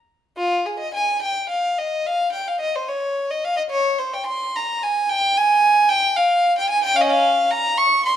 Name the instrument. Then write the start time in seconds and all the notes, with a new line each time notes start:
violin
0.37 F4
0.66 G#4
0.79 D#5
0.94 G#5
1.22 G5
1.49 F5
1.78 D#5
2.06 F5
2.32 G5
2.47 F5
2.60 D#5
2.75 C5
2.88 C#5
3.30 D#5
3.45 F5
3.57 D#5
3.70 C#5
3.99 C5
4.13 G5
4.26 C6
4.56 A#5
4.83 G#5
5.09 G5
5.37 G#5
5.89 G5
6.16 F5
6.58 G5
6.70 G#5
6.84 G5
6.96 C#4 F5
7.01 D#5
7.10 F5
7.51 A#5
7.78 C#6
8.06 C6